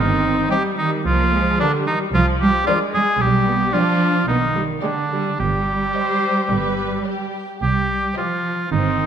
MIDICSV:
0, 0, Header, 1, 7, 480
1, 0, Start_track
1, 0, Key_signature, -3, "minor"
1, 0, Tempo, 538600
1, 941, Time_signature, 4, 2, 24, 8
1, 3813, Tempo, 552486
1, 7970, End_track
2, 0, Start_track
2, 0, Title_t, "Violin section"
2, 0, Program_c, 0, 48
2, 460, Note_on_c, 0, 79, 54
2, 819, Note_off_c, 0, 79, 0
2, 1433, Note_on_c, 0, 74, 57
2, 1789, Note_off_c, 0, 74, 0
2, 2384, Note_on_c, 0, 74, 65
2, 2739, Note_off_c, 0, 74, 0
2, 3339, Note_on_c, 0, 74, 58
2, 3691, Note_off_c, 0, 74, 0
2, 4289, Note_on_c, 0, 74, 52
2, 4658, Note_off_c, 0, 74, 0
2, 5266, Note_on_c, 0, 75, 42
2, 5623, Note_off_c, 0, 75, 0
2, 6231, Note_on_c, 0, 74, 47
2, 6591, Note_off_c, 0, 74, 0
2, 7194, Note_on_c, 0, 75, 42
2, 7543, Note_off_c, 0, 75, 0
2, 7970, End_track
3, 0, Start_track
3, 0, Title_t, "Violin section"
3, 0, Program_c, 1, 48
3, 451, Note_on_c, 1, 60, 58
3, 453, Note_on_c, 1, 75, 57
3, 814, Note_off_c, 1, 60, 0
3, 815, Note_off_c, 1, 75, 0
3, 1428, Note_on_c, 1, 62, 57
3, 1430, Note_on_c, 1, 70, 55
3, 1786, Note_off_c, 1, 62, 0
3, 1787, Note_off_c, 1, 70, 0
3, 2390, Note_on_c, 1, 62, 61
3, 2391, Note_on_c, 1, 70, 63
3, 2743, Note_off_c, 1, 62, 0
3, 2743, Note_off_c, 1, 70, 0
3, 3340, Note_on_c, 1, 67, 52
3, 3341, Note_on_c, 1, 74, 52
3, 3692, Note_off_c, 1, 67, 0
3, 3692, Note_off_c, 1, 74, 0
3, 4293, Note_on_c, 1, 67, 53
3, 4297, Note_on_c, 1, 74, 52
3, 4660, Note_off_c, 1, 67, 0
3, 4662, Note_off_c, 1, 74, 0
3, 5270, Note_on_c, 1, 72, 52
3, 5715, Note_off_c, 1, 72, 0
3, 5742, Note_on_c, 1, 71, 57
3, 6219, Note_off_c, 1, 71, 0
3, 6228, Note_on_c, 1, 67, 45
3, 6704, Note_off_c, 1, 67, 0
3, 7188, Note_on_c, 1, 72, 47
3, 7192, Note_on_c, 1, 67, 45
3, 7539, Note_off_c, 1, 72, 0
3, 7541, Note_off_c, 1, 67, 0
3, 7970, End_track
4, 0, Start_track
4, 0, Title_t, "Oboe"
4, 0, Program_c, 2, 68
4, 0, Note_on_c, 2, 63, 71
4, 449, Note_off_c, 2, 63, 0
4, 457, Note_on_c, 2, 67, 69
4, 566, Note_off_c, 2, 67, 0
4, 697, Note_on_c, 2, 63, 67
4, 807, Note_off_c, 2, 63, 0
4, 941, Note_on_c, 2, 65, 77
4, 1418, Note_off_c, 2, 65, 0
4, 1428, Note_on_c, 2, 62, 72
4, 1537, Note_off_c, 2, 62, 0
4, 1669, Note_on_c, 2, 63, 69
4, 1777, Note_off_c, 2, 63, 0
4, 1910, Note_on_c, 2, 65, 74
4, 2017, Note_off_c, 2, 65, 0
4, 2148, Note_on_c, 2, 67, 76
4, 2373, Note_off_c, 2, 67, 0
4, 2378, Note_on_c, 2, 65, 75
4, 2487, Note_off_c, 2, 65, 0
4, 2622, Note_on_c, 2, 68, 82
4, 2862, Note_on_c, 2, 67, 71
4, 2875, Note_off_c, 2, 68, 0
4, 3332, Note_on_c, 2, 65, 79
4, 3345, Note_off_c, 2, 67, 0
4, 3806, Note_off_c, 2, 65, 0
4, 3812, Note_on_c, 2, 63, 67
4, 4113, Note_off_c, 2, 63, 0
4, 4285, Note_on_c, 2, 62, 60
4, 4747, Note_off_c, 2, 62, 0
4, 4784, Note_on_c, 2, 67, 69
4, 6201, Note_off_c, 2, 67, 0
4, 6718, Note_on_c, 2, 67, 69
4, 7160, Note_off_c, 2, 67, 0
4, 7198, Note_on_c, 2, 65, 60
4, 7655, Note_off_c, 2, 65, 0
4, 7671, Note_on_c, 2, 63, 62
4, 7970, Note_off_c, 2, 63, 0
4, 7970, End_track
5, 0, Start_track
5, 0, Title_t, "Viola section"
5, 0, Program_c, 3, 48
5, 0, Note_on_c, 3, 60, 58
5, 456, Note_off_c, 3, 60, 0
5, 457, Note_on_c, 3, 55, 56
5, 932, Note_off_c, 3, 55, 0
5, 949, Note_on_c, 3, 58, 61
5, 1184, Note_off_c, 3, 58, 0
5, 1184, Note_on_c, 3, 56, 60
5, 1428, Note_off_c, 3, 56, 0
5, 1428, Note_on_c, 3, 55, 62
5, 1907, Note_on_c, 3, 53, 60
5, 1909, Note_off_c, 3, 55, 0
5, 2374, Note_off_c, 3, 53, 0
5, 2385, Note_on_c, 3, 56, 66
5, 2852, Note_off_c, 3, 56, 0
5, 2858, Note_on_c, 3, 55, 54
5, 3095, Note_on_c, 3, 59, 61
5, 3096, Note_off_c, 3, 55, 0
5, 3333, Note_off_c, 3, 59, 0
5, 3338, Note_on_c, 3, 62, 64
5, 3804, Note_off_c, 3, 62, 0
5, 3818, Note_on_c, 3, 59, 58
5, 3888, Note_off_c, 3, 59, 0
5, 4054, Note_on_c, 3, 55, 56
5, 4124, Note_off_c, 3, 55, 0
5, 4292, Note_on_c, 3, 56, 54
5, 4362, Note_off_c, 3, 56, 0
5, 4537, Note_on_c, 3, 55, 52
5, 4780, Note_off_c, 3, 55, 0
5, 4789, Note_on_c, 3, 55, 52
5, 6441, Note_off_c, 3, 55, 0
5, 7666, Note_on_c, 3, 60, 53
5, 7970, Note_off_c, 3, 60, 0
5, 7970, End_track
6, 0, Start_track
6, 0, Title_t, "Cello section"
6, 0, Program_c, 4, 48
6, 0, Note_on_c, 4, 51, 58
6, 446, Note_off_c, 4, 51, 0
6, 451, Note_on_c, 4, 55, 65
6, 691, Note_on_c, 4, 51, 60
6, 696, Note_off_c, 4, 55, 0
6, 933, Note_off_c, 4, 51, 0
6, 936, Note_on_c, 4, 53, 66
6, 1416, Note_off_c, 4, 53, 0
6, 1424, Note_on_c, 4, 50, 64
6, 1667, Note_on_c, 4, 51, 64
6, 1668, Note_off_c, 4, 50, 0
6, 1738, Note_off_c, 4, 51, 0
6, 1907, Note_on_c, 4, 53, 65
6, 1978, Note_off_c, 4, 53, 0
6, 2147, Note_on_c, 4, 55, 69
6, 2218, Note_off_c, 4, 55, 0
6, 2387, Note_on_c, 4, 53, 65
6, 2458, Note_off_c, 4, 53, 0
6, 2626, Note_on_c, 4, 56, 65
6, 2697, Note_off_c, 4, 56, 0
6, 2866, Note_on_c, 4, 55, 58
6, 3327, Note_off_c, 4, 55, 0
6, 3336, Note_on_c, 4, 53, 66
6, 3813, Note_off_c, 4, 53, 0
6, 3813, Note_on_c, 4, 51, 58
6, 4279, Note_off_c, 4, 51, 0
6, 4288, Note_on_c, 4, 50, 53
6, 4774, Note_off_c, 4, 50, 0
6, 4781, Note_on_c, 4, 55, 54
6, 6200, Note_off_c, 4, 55, 0
6, 6716, Note_on_c, 4, 55, 54
6, 7159, Note_off_c, 4, 55, 0
6, 7194, Note_on_c, 4, 53, 53
6, 7653, Note_off_c, 4, 53, 0
6, 7665, Note_on_c, 4, 51, 52
6, 7970, Note_off_c, 4, 51, 0
6, 7970, End_track
7, 0, Start_track
7, 0, Title_t, "Double bass section"
7, 0, Program_c, 5, 48
7, 0, Note_on_c, 5, 31, 68
7, 354, Note_off_c, 5, 31, 0
7, 940, Note_on_c, 5, 36, 71
7, 1325, Note_off_c, 5, 36, 0
7, 1907, Note_on_c, 5, 36, 72
7, 2284, Note_off_c, 5, 36, 0
7, 2859, Note_on_c, 5, 35, 71
7, 3234, Note_off_c, 5, 35, 0
7, 3809, Note_on_c, 5, 35, 69
7, 4186, Note_off_c, 5, 35, 0
7, 4781, Note_on_c, 5, 31, 53
7, 5164, Note_off_c, 5, 31, 0
7, 5744, Note_on_c, 5, 31, 55
7, 6127, Note_off_c, 5, 31, 0
7, 6713, Note_on_c, 5, 36, 56
7, 7092, Note_off_c, 5, 36, 0
7, 7662, Note_on_c, 5, 31, 56
7, 7970, Note_off_c, 5, 31, 0
7, 7970, End_track
0, 0, End_of_file